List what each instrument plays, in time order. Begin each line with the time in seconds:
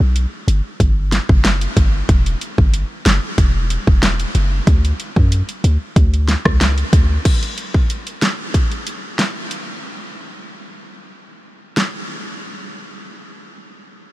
0.00 808-style bass B1
0.16 closed hi-hat
0.48 808-style bass G1, closed hi-hat
0.80 808-style bass G1, kick, closed hi-hat
1.12 snare, closed hi-hat
1.29 808-style bass F#1, kick
1.45 snare, closed hi-hat
1.61 closed hi-hat
1.77 808-style bass G1, kick, closed hi-hat
2.09 808-style bass E1, kick, closed hi-hat
2.26 closed hi-hat
2.41 closed hi-hat
2.58 808-style bass G1, kick
2.74 closed hi-hat
3.06 808-style bass F#1, snare, closed hi-hat
3.38 808-style bass E1, kick, closed hi-hat
3.70 closed hi-hat
3.87 808-style bass E1, kick
4.03 snare, closed hi-hat
4.20 closed hi-hat
4.35 808-style bass F#1, closed hi-hat
4.67 808-style bass D2, kick, closed hi-hat
4.85 closed hi-hat
5.00 closed hi-hat
5.16 808-style bass F#2, kick
5.32 closed hi-hat
5.49 closed hi-hat
5.64 808-style bass D2, closed hi-hat
5.96 808-style bass D2, kick, closed hi-hat
6.14 closed hi-hat
6.28 snare, closed hi-hat
6.45 808-style bass C#2, kick, cross-stick
6.61 snare, closed hi-hat
6.78 closed hi-hat
6.93 808-style bass D2, kick, closed hi-hat
7.25 kick, closed hi-hat, crash
7.43 closed hi-hat
7.58 closed hi-hat
7.74 kick
7.90 closed hi-hat
8.07 closed hi-hat
8.22 snare, closed hi-hat
8.54 kick, closed hi-hat
8.71 closed hi-hat
8.87 closed hi-hat
9.19 snare, closed hi-hat
9.51 closed hi-hat
11.77 snare